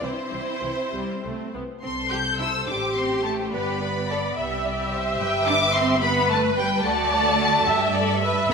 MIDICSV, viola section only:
0, 0, Header, 1, 2, 480
1, 0, Start_track
1, 0, Key_signature, 0, "major"
1, 0, Tempo, 606061
1, 21, Time_signature, 6, 3, 24, 8
1, 982, Tempo, 578592
1, 1942, Tempo, 561272
1, 3862, Tempo, 550964
1, 7253, End_track
2, 0, Start_track
2, 0, Title_t, "Viola section"
2, 0, Program_c, 0, 48
2, 12, Note_on_c, 0, 52, 57
2, 12, Note_on_c, 0, 60, 55
2, 75, Note_off_c, 0, 60, 0
2, 76, Note_off_c, 0, 52, 0
2, 243, Note_on_c, 0, 60, 47
2, 244, Note_on_c, 0, 52, 49
2, 306, Note_off_c, 0, 60, 0
2, 307, Note_off_c, 0, 52, 0
2, 487, Note_on_c, 0, 60, 49
2, 490, Note_on_c, 0, 52, 54
2, 551, Note_off_c, 0, 60, 0
2, 553, Note_off_c, 0, 52, 0
2, 730, Note_on_c, 0, 55, 65
2, 959, Note_off_c, 0, 55, 0
2, 973, Note_on_c, 0, 57, 62
2, 1221, Note_off_c, 0, 57, 0
2, 1226, Note_on_c, 0, 59, 60
2, 1292, Note_off_c, 0, 59, 0
2, 2188, Note_on_c, 0, 67, 80
2, 2874, Note_off_c, 0, 67, 0
2, 2900, Note_on_c, 0, 71, 81
2, 3137, Note_off_c, 0, 71, 0
2, 3148, Note_on_c, 0, 71, 71
2, 3380, Note_on_c, 0, 74, 83
2, 3382, Note_off_c, 0, 71, 0
2, 3621, Note_off_c, 0, 74, 0
2, 3627, Note_on_c, 0, 76, 100
2, 5035, Note_off_c, 0, 76, 0
2, 5070, Note_on_c, 0, 71, 93
2, 5772, Note_on_c, 0, 74, 107
2, 5783, Note_off_c, 0, 71, 0
2, 6485, Note_off_c, 0, 74, 0
2, 6495, Note_on_c, 0, 76, 106
2, 6735, Note_off_c, 0, 76, 0
2, 6742, Note_on_c, 0, 74, 105
2, 6967, Note_on_c, 0, 76, 114
2, 6982, Note_off_c, 0, 74, 0
2, 7253, Note_off_c, 0, 76, 0
2, 7253, End_track
0, 0, End_of_file